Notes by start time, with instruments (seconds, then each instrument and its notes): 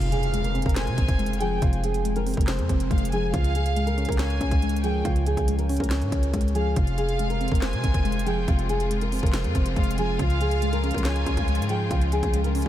Already playing: 808-style bass F1, synth keys C3, violin section F5, impact
0.01 closed hi-hat
0.12 nylon-string guitar G#4, closed hi-hat
0.23 closed hi-hat
0.34 synth keys G#3, closed hi-hat
0.44 nylon-string guitar A#4, closed hi-hat
0.55 synth keys C4, closed hi-hat
0.62 808-style bass F1, nylon-string guitar A#4, kick, closed hi-hat
0.69 closed hi-hat
0.76 synth keys C5, violin section G#5, snare, clap, closed hi-hat
0.87 808-style bass C3, closed hi-hat
0.98 808-style bass G#1, synth keys C4, kick, closed hi-hat
1.08 808-style bass F1, kick, closed hi-hat
1.19 synth keys G#3, closed hi-hat
1.26 closed hi-hat
1.33 closed hi-hat
1.40 synth keys F3, nylon-string guitar G#4, violin section G5, closed hi-hat
1.62 808-style bass F1, synth keys C3, nylon-string guitar F4, kick, closed hi-hat
1.73 closed hi-hat
1.84 nylon-string guitar G#4, closed hi-hat
1.94 closed hi-hat
2.05 synth keys G#3, closed hi-hat
2.16 nylon-string guitar A#4, closed hi-hat
2.26 synth keys C4, closed hi-hat, open hi-hat
2.34 808-style bass F1, nylon-string guitar A#4, kick, closed hi-hat
2.41 closed hi-hat
2.48 synth keys C5, snare, clap, closed hi-hat
2.59 808-style bass F2, closed hi-hat
2.69 808-style bass F1, synth keys C4, kick, closed hi-hat
2.80 closed hi-hat
2.91 808-style bass F1, synth keys G#3, violin section F5, kick, closed hi-hat
2.98 closed hi-hat
3.05 closed hi-hat
3.12 synth keys F3, nylon-string guitar G#4, violin section G#5, closed hi-hat
3.33 808-style bass C#2, synth keys C#3, nylon-string guitar F4, violin section F5, kick, closed hi-hat
3.44 closed hi-hat
3.55 nylon-string guitar G#4, closed hi-hat
3.66 closed hi-hat
3.76 synth keys G#3, closed hi-hat
3.87 nylon-string guitar A#4, closed hi-hat
3.98 synth keys C#4, closed hi-hat
4.05 808-style bass C#2, nylon-string guitar A#4, kick, closed hi-hat
4.12 closed hi-hat
4.19 synth keys C#5, violin section G#5, snare, clap, closed hi-hat
4.30 closed hi-hat
4.41 808-style bass C#2, synth keys C#4, kick, closed hi-hat
4.51 kick, closed hi-hat
4.62 synth keys G#3, closed hi-hat
4.69 closed hi-hat
4.76 closed hi-hat
4.84 synth keys F3, nylon-string guitar G#4, violin section G5, closed hi-hat
5.05 808-style bass C#2, synth keys C#3, nylon-string guitar F4, kick, closed hi-hat
5.16 closed hi-hat
5.26 nylon-string guitar G#4, closed hi-hat
5.37 808-style bass C#2, kick, closed hi-hat
5.48 synth keys G#3, closed hi-hat
5.59 nylon-string guitar A#4, closed hi-hat
5.69 synth keys C#4, closed hi-hat, open hi-hat
5.77 808-style bass C#2, nylon-string guitar A#4, kick, closed hi-hat
5.84 closed hi-hat
5.91 synth keys C#5, snare, clap, closed hi-hat
6.01 808-style bass G#2, closed hi-hat
6.12 808-style bass C#2, synth keys C#4, kick, closed hi-hat
6.23 closed hi-hat
6.33 808-style bass C#2, synth keys G#3, kick, closed hi-hat
6.41 closed hi-hat
6.48 closed hi-hat
6.55 synth keys F3, nylon-string guitar G#4, violin section F5, closed hi-hat
6.76 808-style bass F1, synth keys C3, string section C3 F3 G#3 F4, nylon-string guitar F4, violin section F5, kick, closed hi-hat
6.87 closed hi-hat
6.98 nylon-string guitar G#4, closed hi-hat
7.09 closed hi-hat
7.19 synth keys G#3, closed hi-hat
7.30 nylon-string guitar A#4, closed hi-hat
7.41 synth keys C4, closed hi-hat
7.48 808-style bass F1, nylon-string guitar A#4, kick, closed hi-hat
7.55 closed hi-hat
7.62 synth keys C5, violin section G#5, snare, clap, closed hi-hat
7.73 808-style bass C3, closed hi-hat
7.84 808-style bass G#1, synth keys C4, kick, closed hi-hat
7.94 808-style bass F1, kick, closed hi-hat
8.05 synth keys G#3, closed hi-hat
8.12 closed hi-hat
8.19 closed hi-hat
8.26 synth keys F3, nylon-string guitar G#4, violin section G5, closed hi-hat
8.48 808-style bass F1, synth keys C3, nylon-string guitar F4, kick, closed hi-hat
8.59 closed hi-hat
8.69 nylon-string guitar G#4, closed hi-hat
8.80 closed hi-hat
8.91 synth keys G#3, closed hi-hat
9.01 nylon-string guitar A#4, closed hi-hat
9.12 synth keys C4, closed hi-hat, open hi-hat
9.19 808-style bass F1, nylon-string guitar A#4, kick, closed hi-hat
9.26 closed hi-hat
9.33 synth keys C5, snare, clap, closed hi-hat
9.44 808-style bass F2, closed hi-hat
9.55 808-style bass F1, synth keys C4, kick, closed hi-hat
9.66 closed hi-hat
9.76 808-style bass F1, synth keys G#3, violin section F5, kick, closed hi-hat
9.84 closed hi-hat
9.91 closed hi-hat
9.98 synth keys F3, nylon-string guitar G#4, violin section G#5, closed hi-hat
10.19 808-style bass C#2, synth keys C#3, string section C#3, nylon-string guitar F4, violin section F5, kick, closed hi-hat
10.30 closed hi-hat
10.41 nylon-string guitar G#4, closed hi-hat
10.51 closed hi-hat
10.62 synth keys G#3, closed hi-hat
10.73 nylon-string guitar A#4, closed hi-hat
10.84 synth keys C#4, closed hi-hat
10.91 808-style bass C#2, nylon-string guitar A#4, kick, closed hi-hat
10.98 closed hi-hat
11.05 synth keys C#5, violin section G#5, snare, clap, closed hi-hat
11.16 closed hi-hat
11.26 808-style bass C#2, synth keys C#4, kick, closed hi-hat
11.37 808-style bass C#2, kick, closed hi-hat
11.48 synth keys G#3, closed hi-hat
11.55 808-style bass G#2, closed hi-hat
11.62 closed hi-hat
11.69 synth keys F3, nylon-string guitar G#4, violin section G5, closed hi-hat
11.91 808-style bass C#2, synth keys C#3, nylon-string guitar F4, kick, closed hi-hat
12.01 closed hi-hat
12.12 nylon-string guitar G#4, closed hi-hat
12.23 808-style bass C#2, kick, closed hi-hat
12.34 synth keys G#3, closed hi-hat
12.44 nylon-string guitar A#4, closed hi-hat
12.55 synth keys C#4, closed hi-hat, open hi-hat
12.62 closed hi-hat